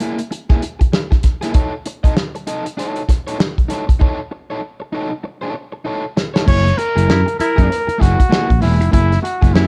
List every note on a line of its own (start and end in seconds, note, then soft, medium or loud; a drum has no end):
0.00 0.18 A#3 medium
0.00 0.18 E4 medium
0.00 0.17 G#4 medium
0.00 closed hi-hat medium
0.19 muted overdriven electric guitar stroke soft
0.19 closed hi-hat soft
0.31 muted overdriven electric guitar stroke soft
0.31 closed hi-hat medium
0.49 0.61 A#3 medium
0.49 0.62 E4 medium
0.49 0.61 G#4 medium
0.49 kick loud
0.49 snare soft
0.62 muted overdriven electric guitar stroke soft
0.62 closed hi-hat medium
0.79 muted overdriven electric guitar stroke soft
0.79 kick medium
0.79 closed hi-hat soft
0.93 muted overdriven electric guitar stroke soft
0.93 snare loud
1.11 muted overdriven electric guitar stroke soft
1.11 kick medium
1.11 snare soft
1.11 closed hi-hat soft
1.23 kick medium
1.23 snare soft
1.23 closed hi-hat medium
1.41 1.54 A#3 medium
1.41 1.53 E4 medium
1.41 1.53 G#4 medium
1.41 snare soft
1.41 closed hi-hat medium
1.54 1.71 D#4 medium
1.54 1.72 A4 medium
1.54 1.72 C#5 medium
1.54 kick loud
1.54 closed hi-hat medium
1.86 muted overdriven electric guitar stroke soft
1.86 closed hi-hat medium
2.04 2.14 D#4 soft
2.04 2.13 A4 soft
2.04 2.13 D#5 soft
2.04 kick medium
2.04 closed hi-hat soft
2.17 snare medium
2.35 muted overdriven electric guitar stroke soft
2.35 closed hi-hat soft
2.47 2.64 D#4 medium
2.47 2.65 A4 medium
2.47 2.65 D#5 medium
2.47 closed hi-hat medium
2.65 muted overdriven electric guitar stroke soft
2.65 closed hi-hat soft
2.77 3.00 D#4 medium
2.77 3.00 A4 medium
2.77 3.01 C#5 medium
2.77 closed hi-hat medium
2.96 closed hi-hat soft
3.09 muted overdriven electric guitar stroke soft
3.09 kick medium
3.09 snare soft
3.09 closed hi-hat medium
3.27 3.37 D#4 medium
3.27 3.37 A4 medium
3.27 3.36 C#5 medium
3.27 closed hi-hat soft
3.39 muted overdriven electric guitar stroke soft
3.39 snare loud
3.58 kick medium
3.58 closed hi-hat soft
3.68 3.83 D#4 medium
3.68 3.83 A4 medium
3.68 3.84 C#5 medium
3.68 snare soft
3.68 closed hi-hat medium
3.87 muted overdriven electric guitar stroke soft
3.87 kick medium
3.87 closed hi-hat medium
4.00 4.17 D#4 medium
4.00 4.18 A4 medium
4.00 4.19 C#5 loud
4.00 kick loud
4.31 muted overdriven electric guitar stroke soft
4.50 4.60 D#4 soft
4.50 4.60 A4 soft
4.50 4.59 C#5 medium
4.80 muted overdriven electric guitar stroke soft
4.93 5.10 D#4 medium
4.93 5.11 A4 medium
4.93 5.09 C#5 medium
5.10 muted overdriven electric guitar stroke soft
5.24 muted overdriven electric guitar stroke soft
5.41 5.53 D#4 soft
5.41 5.53 A4 medium
5.41 5.54 C#5 medium
5.54 muted overdriven electric guitar stroke soft
5.72 muted overdriven electric guitar stroke soft
5.85 6.02 D#4 medium
5.85 6.03 A4 medium
5.85 6.03 C#5 medium
6.17 muted overdriven electric guitar stroke soft
6.17 snare medium
6.34 6.44 D#4 soft
6.34 6.44 A4 soft
6.34 6.43 C#5 medium
6.34 snare medium
6.46 6.71 F#1 loud
6.46 6.64 A#3 loud
6.46 6.64 E4 loud
6.46 6.64 G#4 medium
6.46 6.79 C#5 loud
6.46 kick loud
6.46 crash medium
6.65 muted overdriven electric guitar stroke soft
6.65 snare soft
6.65 closed hi-hat soft
6.77 7.39 A#4 loud
6.77 muted overdriven electric guitar stroke soft
6.77 closed hi-hat medium
6.96 7.06 F#1 medium
6.96 7.06 A#3 soft
6.96 7.06 E4 medium
6.96 7.05 G#4 medium
6.96 closed hi-hat medium
7.08 7.23 F#2 loud
7.08 7.21 E4 medium
7.08 muted overdriven electric guitar stroke soft
7.08 snare loud
7.26 muted overdriven electric guitar stroke soft
7.26 closed hi-hat soft
7.39 7.82 E4 loud
7.39 8.03 A#4 loud
7.39 muted fingered electric bass stroke soft
7.39 closed hi-hat medium
7.56 7.68 F#2 medium
7.56 7.67 A#3 medium
7.56 7.68 E4 medium
7.56 7.68 G#4 medium
7.56 kick medium
7.56 closed hi-hat medium
7.69 muted overdriven electric guitar stroke soft
7.69 closed hi-hat medium
7.87 muted overdriven electric guitar stroke soft
7.87 muted fingered electric bass stroke soft
7.87 closed hi-hat soft
7.98 8.15 F#1 medium
7.98 8.17 A#3 medium
7.98 8.17 E4 loud
7.98 8.61 F#4 loud
7.98 8.17 G#4 loud
7.98 kick medium
8.03 snare soft
8.03 closed hi-hat medium
8.18 muted overdriven electric guitar stroke medium
8.18 kick medium
8.18 closed hi-hat medium
8.29 8.48 A#3 medium
8.29 8.48 E4 medium
8.29 8.47 G#4 medium
8.29 snare loud
8.48 8.59 A#1 medium
8.48 muted overdriven electric guitar stroke medium
8.48 kick medium
8.48 closed hi-hat soft
8.61 8.80 E1 medium
8.61 8.75 A#3 medium
8.61 8.91 E4 medium
8.61 8.76 E4 medium
8.61 8.76 G#4 medium
8.61 snare soft
8.61 open hi-hat medium
8.80 8.90 F1 loud
8.80 muted overdriven electric guitar stroke soft
8.80 closed hi-hat medium
8.91 9.16 F#1 loud
8.91 9.09 A#3 medium
8.91 9.10 E4 loud
8.91 9.21 E4 loud
8.91 9.10 G#4 loud
8.91 kick loud
8.91 closed hi-hat medium
9.12 snare soft
9.12 closed hi-hat soft
9.22 9.55 F#4 medium
9.22 muted overdriven electric guitar stroke soft
9.22 closed hi-hat medium
9.41 9.52 F#1 medium
9.41 9.52 A#3 medium
9.41 9.51 E4 medium
9.41 9.51 G#4 medium
9.41 kick loud
9.41 closed hi-hat medium
9.53 9.67 F#2 loud
9.53 9.67 A#3 medium
9.53 9.67 E4 medium
9.53 9.67 E4 loud
9.53 9.67 G#4 medium
9.53 snare loud